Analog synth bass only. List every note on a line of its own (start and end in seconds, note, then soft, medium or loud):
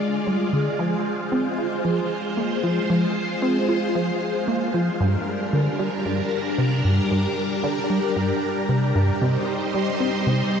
0.27 0.50 G3 medium
0.53 0.69 D3 medium
0.79 0.95 F3 loud
1.32 1.48 C4 medium
1.58 1.68 F4 medium
1.84 2.00 F3 medium
2.37 2.61 A#3 medium
2.63 2.79 F3 medium
2.90 3.06 F3 loud
3.42 3.58 C4 medium
3.69 3.78 F4 medium
3.95 4.11 F3 medium
4.48 4.71 A#3 medium
4.74 4.90 F3 medium
5.00 5.16 G2 loud
5.53 5.69 D3 loud
5.79 5.89 G3 medium
6.05 6.21 G2 medium
6.58 6.82 C3 medium
6.85 7.00 G2 medium
7.11 7.27 G2 loud
7.63 7.79 D3 loud
7.90 7.99 G3 medium
8.16 8.32 G2 medium
8.69 8.92 C3 medium
8.95 9.11 G2 medium
9.21 9.37 C3 loud
9.74 9.90 G3 loud
10.00 10.10 C4 medium
10.26 10.42 C3 medium